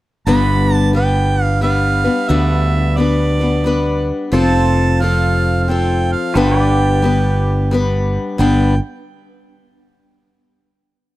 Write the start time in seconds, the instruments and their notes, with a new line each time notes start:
0.26 fretless electric bass G1, steel-string acoustic guitar G2 D3 G3 B3 D4 B4, harmonica B5
0.75 harmonica A5
0.93 steel-string acoustic guitar G3 B3 D4 B4, harmonica G5
1.43 harmonica F5
1.61 steel-string acoustic guitar G3 B3 D4 B4, harmonica F5
2.04 steel-string acoustic guitar G3 B3 D4 B4
2.29 fretless electric bass D2, steel-string acoustic guitar G2 D3 G3 B3 D4 B4, harmonica E5
2.97 steel-string acoustic guitar G3 B3 D4 B4, harmonica D5
3.40 steel-string acoustic guitar G3 B3 D4 B4
3.64 steel-string acoustic guitar G3 B3 D4 B4
4.32 fretless electric bass F1, steel-string acoustic guitar F3 C4 F4 A4, pedal steel guitar F4 A4 C5, harmonica A5
5.00 steel-string acoustic guitar F3 C4 F4 A4, harmonica F5
5.63 harmonica F5
5.68 steel-string acoustic guitar F3 C4 F4 A4, harmonica G5
6.12 harmonica F5
6.34 fretless electric bass G1, steel-string acoustic guitar G2 D3 G3 B3 D4 B4, pedal steel guitar F4 A4 C5, harmonica G5
6.59 pedal steel guitar G4 B4 D5
7.02 steel-string acoustic guitar G3 B3 D4 B4
7.71 steel-string acoustic guitar G3 B3 D4 B4
8.38 fretless electric bass G1, steel-string acoustic guitar G2 D3 G3 B3 D4 B4, harmonica G5